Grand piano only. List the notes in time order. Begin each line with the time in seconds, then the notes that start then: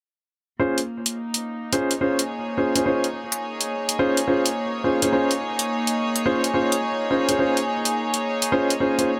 0.59 C#4 F4 G#4 C5
1.73 C#4 F4 G#4 C5
2.01 C#4 F4 G#4 C5
2.58 C#4 F4 G#4 C5
2.75 C#4 F4 G#4 C5
2.86 C#4 F4 G#4 C5
3.99 C#4 F4 G#4 C5
4.28 C#4 F4 G#4 C5
4.84 C#4 F4 G#4 C5
5.02 C#4 F4 G#4 C5
5.13 C#4 F4 G#4 C5
6.26 C#4 F4 G#4 C5
6.54 C#4 F4 G#4 C5
7.11 C#4 F4 G#4 C5
7.29 C#4 F4 G#4 C5
7.39 C#4 F4 G#4 C5
8.52 C#4 F4 G#4 C5
8.80 C#4 F4 G#4 C5
8.98 C#4 F4 G#4 C5